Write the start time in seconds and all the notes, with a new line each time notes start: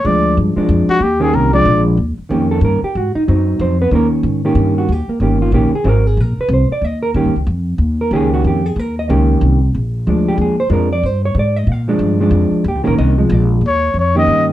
0.05 D2 F3 G#3 D4 D5
0.37 G2
0.56 F3 G#3 D4, muted upright bass stroke
0.69 F2
0.88 F#4, muted upright bass stroke
1.00 D#2 G4
1.20 D#3 A#3 C#4 G4 G#4
1.33 C2 A#4
1.53 F3 G#3 D4 D5
1.65 A#1
1.97 D#2
2.18 muted upright bass stroke
2.29 F2 D#3 A#3 C#4 G4
2.51 A4
2.61 G2 A#4
2.82 G4, muted upright bass stroke
2.95 G#2 F#4
3.15 D#4, muted upright bass stroke
3.28 F#2 F#3 C4 D#4
3.59 F2 C4 C5
3.82 B3 B4
3.91 D#2 D#3 A#3 C#4 G4 A#4
3.96 A#3
4.23 G#2
4.45 D#3 A#3 C#4 G4
4.55 G2
4.78 F#4
4.89 D#2 G4
5.08 A#3, muted upright bass stroke
5.20 G1 D#3 A#3 C#4 G4
5.42 F4
5.52 A#1 D#3 A#3 C#4 G4
5.72 G#4, muted upright bass stroke
5.84 G#1 F#3 C4 D#4
5.89 A#4
6.07 G#4
6.17 A#1 A#4
6.38 B4, muted upright bass stroke
6.48 C2
6.54 C5
6.69 D5, muted upright bass stroke
6.81 D#2 D#5
7.03 A#4
7.14 G2 D#3 A#3 C#4 G4
7.25 D#2
7.36 C#2
7.47 F2
7.78 D#2
8.01 A#4
8.11 C#2 D#3 A#3 C#4 G4
8.15 G#4
8.34 F#4
8.44 F2 G4
8.66 G#4
8.76 D#2 A#4
8.99 D#5
9.09 C#2 D#3 A#3 C#4 G4
9.41 C2
9.74 A#1
10.07 D2 F3 G#3 D4
10.28 G4
10.38 D#2 G#4
10.60 C5
10.70 F2 F3 G#3 D4 A#4
10.93 D5
11.03 G2 C5
11.25 C#5
11.35 G#2
11.39 D5
11.56 D#5
11.67 A#2
11.72 F5
11.88 F3 G#3 D4
11.99 G2
12.20 F3 G#3 D4
12.31 F2
12.51 muted upright bass stroke
12.64 D#2 G4
12.75 C#2
12.84 A#1 D#3 A#3 C#4 G4 A#4
12.98 C2 D#5
13.18 F3 G#3
13.29 A#1 D5
13.61 D#2
13.67 C#5
13.94 F2
13.99 C#5
14.15 D#3 A#3 C#4 G4 D#5
14.27 G2